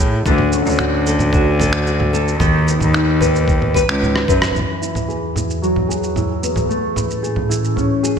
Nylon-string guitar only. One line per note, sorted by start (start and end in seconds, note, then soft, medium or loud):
0.00 1.62 A3 medium
0.00 0.52 C#4 medium
0.00 0.31 E4 medium
0.00 0.31 G#4 medium
0.25 2.40 D3 medium
0.52 2.46 C#4 medium
0.79 1.33 F#4 medium
1.06 1.58 A4 medium
1.33 1.86 F#4 medium
1.60 2.12 A4 medium
1.87 2.93 F#4 medium
2.13 2.46 A4 medium
2.40 4.54 D#3 medium
2.67 6.17 B3 medium
2.94 3.47 D#4 medium
3.20 3.74 B4 medium
3.48 4.00 D#4 medium
3.75 4.28 B4 medium
4.01 4.60 D#4 medium
4.28 5.08 B4 medium
4.55 8.05 E3 medium
4.82 5.35 E4 soft
5.08 5.88 G#4 medium
5.35 6.15 E4 soft
5.62 6.69 F#3 medium
5.89 7.22 G#4 medium
6.16 6.96 E4 medium
6.42 6.75 B3 soft
6.69 8.19 A3 medium
6.96 7.48 E4 soft
7.23 8.02 G#4 medium
7.49 8.19 E4 medium
7.76 8.19 C#4 soft
8.03 8.19 G#4 medium